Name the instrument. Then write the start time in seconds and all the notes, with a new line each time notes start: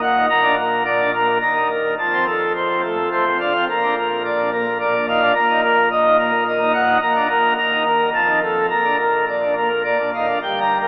pipe organ
Already playing: A#1 A#2
0.02 F#5
0.16 D#4
0.29 A#1 A#2 A#5
0.43 D4
0.58 A#4
0.86 D5
0.99 D4
1.14 A#3 A#4
1.41 D#1 D#2 A#5
1.56 D#4
1.70 A#4
1.99 F1 F2 A5
2.13 C4
2.27 A4
2.55 C5
2.69 C4
2.83 A3 A4
3.12 A3 C5
3.26 C4
3.40 D4 F5
3.55 C4
3.69 A#1 A#2 A#5
3.83 D4
3.97 A#4
4.25 D5
4.39 D4
4.52 A#3 A#4
4.81 A#3 D5
4.95 D4
5.08 D#4 F5
5.22 D4
5.35 A#1 A#2 A#5
5.49 D#4
5.63 A#4
5.92 D#5
6.05 D#4
6.18 A#3 A#4
6.47 A#3 D#5
6.61 D#4
6.74 F#5
6.89 D#4
7.02 A#1 A#2 A#5
7.16 D4
7.29 A#4
7.58 D#1 D#2 A#5
7.72 D#4
7.85 A#4
8.14 F1 F2 A5
8.28 D#4
8.42 A4
8.70 A#1 A#2 A#5
8.84 D4
8.99 A#4
9.28 D5
9.42 D4
9.56 A#3 A#4
9.84 A#3 D5
9.99 D4
10.14 D#4 F5
10.28 D4
10.42 G1 G2 G5
10.61 A#5
10.80 A#4